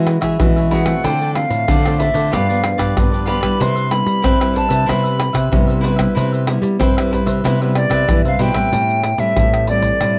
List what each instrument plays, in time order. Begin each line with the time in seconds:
Already playing: nylon-string guitar E3 G#3 C#4 F#4
0.06 muted cavaquinho stroke, pandeiro, tamborim, maracas
0.21 nylon-string guitar E3, cavaquinho G#4 C#5 E5, pandeiro, tamborim, maracas, surdo
0.40 nylon-string guitar B2 E3 G#3 C#4 F#4, pandeiro, tamborim, maracas, surdo
0.56 cavaquinho G#4 C#5 E5, pandeiro, maracas
0.71 nylon-string guitar G#3 C#4 F#4, cavaquinho E4 G#4 C#5 E5, flute F#5, pandeiro, surdo
0.85 nylon-string guitar A3 C4 F4, cavaquinho G#4 C#5 E5, pandeiro, tamborim, maracas, surdo
1.04 nylon-string guitar D3, cavaquinho F4 A4 C5 D5, flute G5, pandeiro, maracas, surdo
1.21 cavaquinho A4 C5 D5, pandeiro, maracas
1.34 nylon-string guitar A3 C4 F4, flute F5, muted cavaquinho stroke, pandeiro, tamborim
1.50 nylon-string guitar A2, pandeiro, maracas
1.68 nylon-string guitar A2 D3, cavaquinho F4 A4 C5 D5, pandeiro, tamborim, maracas, surdo
1.85 nylon-string guitar A3 C4 F4, cavaquinho A4 C5 D5, pandeiro, tamborim, maracas
1.99 cavaquinho F4 A4 C5 D5, flute E5, pandeiro, maracas, surdo
2.14 nylon-string guitar D3, cavaquinho A4 C5 D5, pandeiro, maracas, surdo
2.31 nylon-string guitar G2 F3 B3 D4, cavaquinho F4 G4 B4 D5, flute F5, pandeiro, tamborim, maracas, surdo
2.49 nylon-string guitar F3 B3 D4, cavaquinho G4 B4 D5, pandeiro, maracas
2.63 muted cavaquinho stroke, pandeiro, tamborim
2.78 nylon-string guitar G2, cavaquinho G4 B4 D5, pandeiro, tamborim, maracas, surdo
2.96 nylon-string guitar G2 D3 F3 B3 D4, pandeiro, tamborim, maracas, surdo
3.11 cavaquinho G4 B4 D5, pandeiro, maracas
3.26 nylon-string guitar F3 B3 D4, cavaquinho F4 G4 B4 D5, flute B5, pandeiro, maracas
3.40 nylon-string guitar G3 B3 E4, cavaquinho G4 B4 D5, pandeiro, tamborim, maracas, surdo
3.59 nylon-string guitar C3, cavaquinho E4 B4 C5 E5, flute C6, pandeiro, maracas, surdo
3.75 cavaquinho B4 C5 E5, pandeiro, maracas
3.90 nylon-string guitar G3 B3 E4, flute B5, muted cavaquinho stroke, pandeiro, tamborim
4.06 nylon-string guitar G3, pandeiro, maracas
4.22 nylon-string guitar G2 C4, cavaquinho E4 B4 C5 E5, pandeiro, tamborim, maracas, surdo
4.40 nylon-string guitar G3 E4, cavaquinho B4 C5 E5, pandeiro, tamborim, maracas
4.54 cavaquinho E4 B4 C5 E5, flute A5, pandeiro, maracas, surdo
4.68 nylon-string guitar C3, cavaquinho B4 C5 E5, pandeiro, maracas, surdo
4.86 nylon-string guitar C3 G3 B3 E4, cavaquinho E4 B4 C5 E5, flute B5, pandeiro, tamborim, maracas, surdo
5.04 cavaquinho B4 C5 E5, pandeiro, maracas
5.18 muted cavaquinho stroke, pandeiro, tamborim, maracas
5.33 nylon-string guitar C3, cavaquinho B4 C5 E5, pandeiro, tamborim, maracas, surdo
5.52 nylon-string guitar G2 C3 G3 B3 E4, pandeiro, tamborim, maracas, surdo
5.67 cavaquinho B4 C5 E5, pandeiro, maracas
5.81 nylon-string guitar G3 B3, cavaquinho E4 B4 C5 E5, pandeiro
5.85 nylon-string guitar E4
5.96 nylon-string guitar G3 B3 E4, cavaquinho B4 C5 E5, pandeiro, tamborim, maracas, surdo
6.15 nylon-string guitar C3, cavaquinho E4 B4 C5 E5, pandeiro, maracas, surdo
6.32 cavaquinho B4 C5 E5, pandeiro, maracas
6.46 nylon-string guitar G3 B3 E4, muted cavaquinho stroke, pandeiro, tamborim
6.62 nylon-string guitar G3, pandeiro, maracas
6.79 nylon-string guitar G2 C4, cavaquinho E4 B4 C5 E5, pandeiro, tamborim, maracas, surdo
6.96 nylon-string guitar G3 E4, cavaquinho B4 C5 E5, pandeiro, tamborim, maracas
7.11 cavaquinho E4 B4 C5 E5, pandeiro, maracas, surdo
7.26 nylon-string guitar C3, cavaquinho B4 C5 E5, pandeiro, maracas, surdo
7.44 nylon-string guitar C3 G3 B3 E4, cavaquinho E4 B4 C5 E5, pandeiro, tamborim, maracas, surdo
7.61 nylon-string guitar G3 B3 E4, cavaquinho B4 C5 E5, pandeiro, maracas
7.75 flute D5, pandeiro, tamborim, maracas
7.90 nylon-string guitar C3, cavaquinho B4 C5 E5, pandeiro, tamborim, maracas, surdo
8.08 nylon-string guitar G2 E3 G3 B3 E4, pandeiro, tamborim, maracas, surdo
8.25 nylon-string guitar C3, cavaquinho B4 C5 E5, flute F5, pandeiro, maracas
8.39 nylon-string guitar B2 G3 B3 E4, cavaquinho E4 B4 C5 E5, flute G5, pandeiro, surdo
8.54 nylon-string guitar A2 G3 C4 E4, cavaquinho B4 C5 E5, pandeiro, tamborim, maracas, surdo
8.72 nylon-string guitar A2, pandeiro, maracas, surdo
8.89 pandeiro, maracas
9.04 pandeiro, tamborim, maracas
9.18 nylon-string guitar A2 G3 C4 E4, flute E5, pandeiro, maracas
9.36 nylon-string guitar A2 E3, pandeiro, tamborim, maracas, surdo
9.54 pandeiro, tamborim, maracas
9.67 nylon-string guitar G3 C4 E4, flute D5, pandeiro, maracas, surdo
9.82 pandeiro, maracas, surdo
10.01 nylon-string guitar A2 G3 C4 E4, pandeiro, tamborim, maracas, surdo